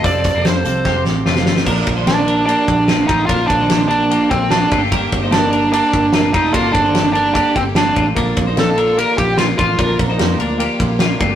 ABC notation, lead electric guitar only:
X:1
M:4/4
L:1/16
Q:1/4=148
K:Bb
V:1 name="Lead electric guitar"
d4 c6 z6 | z4 D4 D6 E2 | F2 D4 D4 C2 D3 z | z4 D4 D6 E2 |
F2 D4 D2 D2 C2 D3 z | z4 A4 B2 G2 F2 F2- | F2 z12 z2 |]